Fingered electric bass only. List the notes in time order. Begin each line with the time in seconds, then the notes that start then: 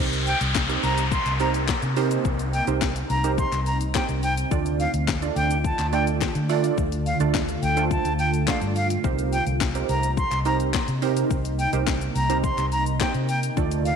0.00 C2
0.41 C2
0.83 C2
1.26 C2
1.82 C3
2.25 C2
2.67 C2
3.10 C2
3.52 C2
4.09 C2
4.51 D2
4.94 D2
5.36 D2
5.79 D2
6.35 D3
6.78 D2
7.20 D2
7.63 D2
8.05 D2
8.62 G2
9.04 C2
9.47 C2
9.89 C2
10.32 C2
10.88 C3
11.31 C2
11.73 C2
12.16 C2
12.58 C2
13.15 C3
13.57 D2